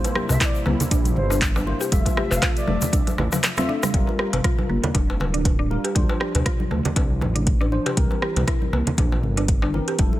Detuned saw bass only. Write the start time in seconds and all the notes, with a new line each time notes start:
0.30 C2
0.66 C2
0.91 A#1
1.16 G1
1.92 F1
2.31 F1
2.68 F1
2.93 C2
3.18 A1
3.94 G1
4.33 G1
4.69 G1
4.95 F1
5.20 D1
5.96 D2
6.35 D2
6.71 D2
6.96 C2
7.21 A1
7.97 C2
8.36 C2
8.73 C2
8.98 A#1
9.23 G1
9.99 F1